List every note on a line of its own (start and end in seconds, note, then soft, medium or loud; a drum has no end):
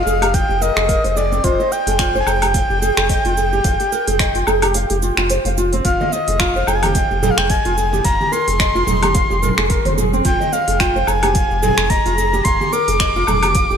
0.00 0.36 F5 loud
0.06 0.44 F1 medium
0.06 0.21 G#4 loud
0.06 shaker medium
0.22 0.33 G4 loud
0.22 open hi-hat soft
0.22 low woodblock medium
0.22 shaker soft
0.34 0.48 F5 medium
0.34 0.63 G5 loud
0.34 kick loud
0.34 open hi-hat medium
0.34 shaker soft
0.49 0.70 F1 medium
0.49 0.61 G4 medium
0.49 shaker soft
0.61 0.76 A#4 medium
0.61 1.16 D#5 loud
0.61 shaker medium
0.77 0.98 F1 medium
0.77 0.88 G#4 medium
0.77 finger snap medium
0.77 shaker soft
0.89 1.03 A#4 loud
0.89 kick loud
0.89 open hi-hat medium
0.89 shaker soft
1.04 1.40 F1 medium
1.04 1.11 C5 medium
1.04 open hi-hat soft
1.04 shaker soft
1.16 1.31 G#4 loud
1.16 1.45 D5 loud
1.16 shaker medium
1.32 1.43 C4 medium
1.32 shaker soft
1.44 1.56 F1 loud
1.44 1.59 F4 loud
1.44 1.73 C5 loud
1.44 kick medium
1.44 open hi-hat medium
1.44 shaker soft
1.60 1.71 D#5 loud
1.60 shaker soft
1.72 1.86 D#5 medium
1.72 2.20 G5 loud
1.72 shaker medium
1.87 2.23 F1 medium
1.87 1.99 G#4 medium
1.87 open hi-hat soft
1.87 shaker soft
1.99 2.14 F4 loud
1.99 finger snap medium
1.99 kick loud
1.99 open hi-hat medium
1.99 shaker soft
2.15 2.27 C5 loud
2.15 shaker soft
2.20 2.29 G#5 medium
2.27 2.65 F1 medium
2.27 2.41 G#4 medium
2.27 5.30 G5 loud
2.27 low woodblock medium
2.27 shaker medium
2.42 2.54 G4 loud
2.42 open hi-hat soft
2.42 low woodblock medium
2.42 shaker soft
2.54 2.69 F5 medium
2.54 kick medium
2.54 open hi-hat medium
2.54 shaker soft
2.70 2.91 F1 loud
2.70 2.81 G4 medium
2.70 shaker soft
2.82 2.97 G#4 loud
2.82 shaker medium
2.97 3.18 F1 medium
2.97 3.09 G#4 medium
2.97 finger snap medium
2.97 shaker soft
3.09 3.24 D#5 medium
3.09 kick loud
3.09 open hi-hat medium
3.09 shaker soft
3.25 3.60 F1 medium
3.25 3.36 F4 loud
3.25 open hi-hat soft
3.25 shaker soft
3.37 3.51 G#4 medium
3.37 shaker medium
3.53 3.64 G4 loud
3.53 shaker soft
3.64 3.77 F1 loud
3.64 3.79 F5 medium
3.64 kick loud
3.64 open hi-hat medium
3.64 shaker soft
3.80 3.92 G4 medium
3.80 open hi-hat soft
3.80 shaker soft
3.92 4.07 A#4 medium
3.92 shaker medium
4.08 4.43 F1 medium
4.08 4.19 G#4 medium
4.08 open hi-hat soft
4.08 shaker soft
4.19 4.34 D#5 medium
4.19 finger snap medium
4.19 kick loud
4.19 open hi-hat medium
4.19 shaker soft
4.35 4.46 F4 loud
4.35 open hi-hat soft
4.35 shaker soft
4.47 4.85 F1 medium
4.47 4.62 G#4 loud
4.47 low woodblock medium
4.47 shaker medium
4.62 4.74 G4 loud
4.62 open hi-hat soft
4.62 low woodblock medium
4.62 shaker soft
4.74 4.89 F5 medium
4.74 open hi-hat medium
4.74 shaker soft
4.90 5.11 F1 loud
4.90 5.02 G4 medium
4.90 open hi-hat soft
4.90 shaker soft
5.02 5.17 F4 medium
5.02 shaker medium
5.17 5.38 F1 medium
5.17 5.29 F4 loud
5.17 finger snap medium
5.17 shaker soft
5.30 5.44 C5 medium
5.30 open hi-hat medium
5.30 shaker soft
5.45 5.81 F1 medium
5.45 5.52 F5 loud
5.45 open hi-hat soft
5.45 shaker soft
5.58 5.71 F4 medium
5.58 shaker medium
5.73 5.84 C4 medium
5.73 open hi-hat soft
5.73 shaker soft
5.84 5.97 F1 loud
5.84 6.00 F4 loud
5.84 6.13 F5 medium
5.84 kick loud
5.84 open hi-hat medium
5.84 shaker soft
6.01 6.11 D#5 loud
6.01 high conga medium
6.01 shaker soft
6.12 6.41 D#5 medium
6.12 6.26 D#5 medium
6.12 shaker medium
6.28 6.63 F1 medium
6.28 6.40 G#4 medium
6.28 open hi-hat soft
6.28 shaker soft
6.39 6.55 F4 loud
6.39 6.69 F5 medium
6.39 finger snap medium
6.39 kick loud
6.39 open hi-hat medium
6.39 shaker soft
6.56 6.67 C5 loud
6.56 shaker soft
6.67 7.05 F1 medium
6.67 6.81 G#4 medium
6.67 6.77 G5 loud
6.67 low woodblock medium
6.67 shaker medium
6.75 6.84 G#5 medium
6.83 6.95 G4 loud
6.83 7.22 G5 loud
6.83 open hi-hat soft
6.83 muted conga medium
6.83 high conga medium
6.83 low woodblock medium
6.83 shaker soft
6.95 7.09 F5 medium
6.95 kick loud
6.95 open hi-hat medium
6.95 shaker soft
7.10 7.31 F1 loud
7.10 7.22 G4 medium
7.10 shaker soft
7.22 7.37 G#4 loud
7.22 7.32 G5 medium
7.22 muted conga soft
7.22 low conga medium
7.22 shaker medium
7.30 7.40 F5 medium
7.38 7.59 F1 medium
7.38 7.49 G#4 medium
7.38 7.52 G5 loud
7.38 finger snap medium
7.38 shaker soft
7.50 7.65 D#5 medium
7.50 8.04 G#5 loud
7.50 kick loud
7.50 open hi-hat medium
7.50 muted conga soft
7.50 shaker soft
7.65 8.01 F1 medium
7.65 7.76 F4 loud
7.65 open hi-hat soft
7.65 shaker soft
7.78 7.91 G#4 medium
7.78 shaker medium
7.93 8.04 G4 loud
7.93 muted conga medium
7.93 shaker soft
8.04 8.17 F1 loud
8.04 8.19 F5 medium
8.04 8.34 A#5 loud
8.04 kick loud
8.04 open hi-hat medium
8.04 shaker soft
8.20 8.32 G4 medium
8.20 high conga medium
8.20 shaker soft
8.32 8.47 A#4 medium
8.32 9.97 C6 loud
8.32 shaker medium
8.48 8.83 F1 medium
8.48 8.59 G#4 medium
8.48 open hi-hat soft
8.48 shaker soft
8.60 8.75 D#5 medium
8.60 finger snap medium
8.60 kick loud
8.60 open hi-hat medium
8.60 shaker soft
8.75 8.86 F4 loud
8.75 shaker soft
8.87 9.25 F1 medium
8.87 9.02 G#4 loud
8.87 low conga medium
8.87 shaker medium
9.03 9.14 G4 loud
9.03 open hi-hat soft
9.03 muted conga medium
9.03 high conga medium
9.03 low woodblock medium
9.03 shaker soft
9.15 9.29 F5 medium
9.15 kick loud
9.15 open hi-hat medium
9.15 shaker soft
9.30 9.51 F1 medium
9.30 9.42 G4 medium
9.30 high conga soft
9.30 shaker soft
9.42 9.57 A#4 medium
9.42 low conga medium
9.42 shaker medium
9.58 9.79 F1 medium
9.58 9.69 G#4 medium
9.58 finger snap medium
9.58 muted conga soft
9.58 shaker soft
9.70 9.84 A#4 loud
9.70 kick loud
9.70 open hi-hat medium
9.70 shaker soft
9.85 10.21 F1 medium
9.85 9.92 C5 medium
9.85 open hi-hat soft
9.85 muted conga medium
9.85 high conga medium
9.85 shaker soft
9.97 10.12 G#4 medium
9.97 low conga medium
9.97 shaker medium
10.13 10.25 C4 medium
10.13 shaker soft
10.25 10.37 F1 loud
10.25 10.40 F4 loud
10.25 10.54 G5 loud
10.25 kick loud
10.25 open hi-hat medium
10.25 shaker soft
10.40 10.51 D#5 loud
10.40 high conga medium
10.40 shaker soft
10.52 10.67 D#5 medium
10.52 10.82 F5 medium
10.52 shaker medium
10.68 11.03 F1 medium
10.68 10.79 G#4 medium
10.68 open hi-hat soft
10.68 shaker soft
10.80 10.95 F4 loud
10.80 11.09 G5 medium
10.80 finger snap medium
10.80 kick loud
10.80 open hi-hat medium
10.80 shaker soft
10.96 11.07 C5 loud
10.96 shaker soft
11.07 11.45 F1 medium
11.07 11.21 G#4 medium
11.07 11.62 G#5 loud
11.07 low woodblock medium
11.07 shaker medium
11.23 11.35 G4 loud
11.23 open hi-hat soft
11.23 muted conga medium
11.23 high conga medium
11.23 low woodblock medium
11.23 shaker soft
11.35 11.49 F5 medium
11.35 kick loud
11.35 open hi-hat medium
11.35 shaker soft
11.50 11.71 F1 medium
11.50 11.62 G4 medium
11.50 shaker soft
11.62 11.77 G#4 loud
11.62 11.91 G#5 loud
11.62 muted conga soft
11.62 low conga medium
11.62 shaker medium
11.78 11.99 F1 loud
11.78 11.90 G#4 medium
11.78 finger snap medium
11.78 shaker soft
11.90 12.05 D#5 medium
11.90 12.46 A#5 loud
11.90 kick loud
11.90 open hi-hat medium
11.90 muted conga soft
11.90 shaker soft
12.05 12.41 F1 medium
12.05 12.17 F4 loud
12.05 open hi-hat soft
12.05 shaker soft
12.18 12.32 G#4 medium
12.18 shaker medium
12.33 12.45 G4 loud
12.33 muted conga medium
12.33 shaker soft
12.44 12.57 F1 loud
12.44 12.59 F5 medium
12.44 12.74 C6 loud
12.44 kick loud
12.44 open hi-hat medium
12.44 shaker soft
12.60 12.72 G4 medium
12.60 high conga medium
12.60 shaker soft
12.72 12.88 A#4 medium
12.72 13.77 D6 loud
12.72 shaker medium
12.88 13.24 F1 medium
12.88 13.00 G#4 medium
12.88 open hi-hat soft
12.88 shaker soft
13.00 13.15 D#5 medium
13.00 finger snap medium
13.00 kick loud
13.00 open hi-hat medium
13.00 shaker soft
13.16 13.27 F4 loud
13.16 shaker soft
13.27 13.65 F1 medium
13.27 13.43 G#4 loud
13.27 low conga medium
13.27 low woodblock medium
13.27 shaker medium
13.43 13.55 G4 loud
13.43 open hi-hat soft
13.43 muted conga medium
13.43 high conga medium
13.43 low woodblock medium
13.43 shaker soft
13.55 13.69 F5 medium
13.55 kick loud
13.55 open hi-hat medium
13.55 shaker soft
13.70 13.77 F1 medium
13.70 13.77 G4 medium
13.70 high conga soft
13.70 shaker soft